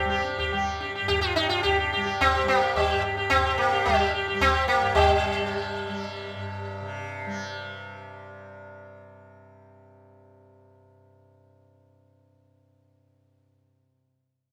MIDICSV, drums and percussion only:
0, 0, Header, 1, 2, 480
1, 0, Start_track
1, 0, Tempo, 558140
1, 1897, Time_signature, 5, 2, 24, 8
1, 2848, Tempo, 544465
1, 5248, Tempo, 530973
1, 12920, End_track
2, 0, Start_track
2, 0, Title_t, "Tabla"
2, 212, Note_on_c, 9, 62, 67
2, 298, Note_off_c, 9, 62, 0
2, 333, Note_on_c, 9, 64, 56
2, 419, Note_off_c, 9, 64, 0
2, 451, Note_on_c, 9, 60, 78
2, 451, Note_on_c, 9, 64, 69
2, 537, Note_off_c, 9, 60, 0
2, 537, Note_off_c, 9, 64, 0
2, 694, Note_on_c, 9, 62, 63
2, 780, Note_off_c, 9, 62, 0
2, 937, Note_on_c, 9, 63, 79
2, 937, Note_on_c, 9, 64, 80
2, 1023, Note_off_c, 9, 63, 0
2, 1023, Note_off_c, 9, 64, 0
2, 1177, Note_on_c, 9, 60, 73
2, 1263, Note_off_c, 9, 60, 0
2, 1419, Note_on_c, 9, 63, 88
2, 1419, Note_on_c, 9, 64, 76
2, 1505, Note_off_c, 9, 63, 0
2, 1505, Note_off_c, 9, 64, 0
2, 1660, Note_on_c, 9, 60, 68
2, 1746, Note_off_c, 9, 60, 0
2, 1899, Note_on_c, 9, 63, 83
2, 1899, Note_on_c, 9, 64, 68
2, 1985, Note_off_c, 9, 63, 0
2, 1985, Note_off_c, 9, 64, 0
2, 2135, Note_on_c, 9, 60, 91
2, 2221, Note_off_c, 9, 60, 0
2, 2372, Note_on_c, 9, 60, 99
2, 2372, Note_on_c, 9, 64, 86
2, 2458, Note_off_c, 9, 60, 0
2, 2458, Note_off_c, 9, 64, 0
2, 2847, Note_on_c, 9, 63, 77
2, 2847, Note_on_c, 9, 64, 73
2, 2935, Note_off_c, 9, 63, 0
2, 2935, Note_off_c, 9, 64, 0
2, 3095, Note_on_c, 9, 60, 84
2, 3183, Note_off_c, 9, 60, 0
2, 3334, Note_on_c, 9, 60, 97
2, 3334, Note_on_c, 9, 64, 96
2, 3422, Note_off_c, 9, 60, 0
2, 3422, Note_off_c, 9, 64, 0
2, 3814, Note_on_c, 9, 63, 89
2, 3814, Note_on_c, 9, 64, 80
2, 3903, Note_off_c, 9, 63, 0
2, 3903, Note_off_c, 9, 64, 0
2, 4058, Note_on_c, 9, 60, 79
2, 4146, Note_off_c, 9, 60, 0
2, 4297, Note_on_c, 9, 60, 114
2, 4297, Note_on_c, 9, 64, 98
2, 4385, Note_off_c, 9, 60, 0
2, 4385, Note_off_c, 9, 64, 0
2, 12920, End_track
0, 0, End_of_file